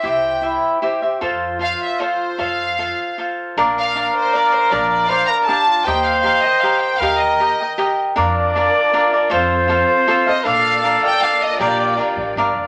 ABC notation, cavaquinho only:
X:1
M:3/4
L:1/8
Q:1/4=157
K:F
V:1 name="Cavaquinho"
[EGce]2 [EGce]2 [EGce] [Gce] | [FAcf]2 [FAcf]2 [FAcf]2 | [FAcf]2 [FAcf]2 [FAcf]2 | [K:Bb] [DBdf]2 [DBdf]2 [DBdf]2 |
[DBdf]2 [DBdf]2 [DBdf]2 | [GBeg]2 [GBeg] [Beg] [GBeg]2 | [GBeg]2 [GBeg] [Beg] [GBeg]2 | [DBdf]2 [DBdf]2 [DBdf] [Bdf] |
[FAcf]2 [FAcf]2 [FAcf] [Acf] | [Ddf]2 [DBdf] [Bdf] [Ddf]2 | [DBdf]2 [DBdf]2 [DBdf]2 |]